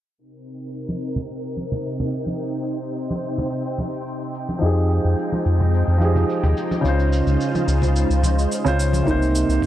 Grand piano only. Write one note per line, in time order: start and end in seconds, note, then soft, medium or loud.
4.59 5.96 F3 medium
4.59 5.97 D#4 medium
4.63 5.99 G4 medium
4.63 6.00 G#4 medium
5.98 6.80 F3 medium
5.98 6.81 D#4 medium
6.02 6.82 G4 medium
6.02 6.83 G#4 medium
6.81 8.19 C#3 medium
6.81 8.20 C#4 medium
6.86 8.21 F4 medium
6.86 8.22 C5 medium
8.64 9.03 C#3 medium
8.64 9.04 C#4 medium
8.64 9.04 F4 medium
8.64 9.05 C5 loud
9.03 9.66 C3 medium
9.03 9.66 A#3 medium
9.08 9.66 D#4 medium
9.08 9.66 C5 medium